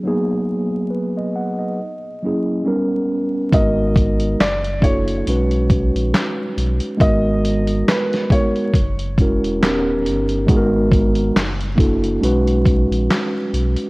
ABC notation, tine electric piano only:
X:1
M:4/4
L:1/16
Q:"Swing 16ths" 1/4=69
K:G#m
V:1 name="Tine electric piano"
[F,A,B,DG]4 B d f d2 z [F,A,CEG]2 [=G,B,CDA]4 | [G,B,DFA]4 z2 [A,=DEF=A]2 [G,C^DFB]6 z2 | [G,B,DFA]4 z2 [G,B,DFA]2 z2 [G,CEFA]2 [B,CD=GA]4 | [G,B,DFGA]4 z2 [A,=DEF=A]2 [G,C^DFB]6 z2 |]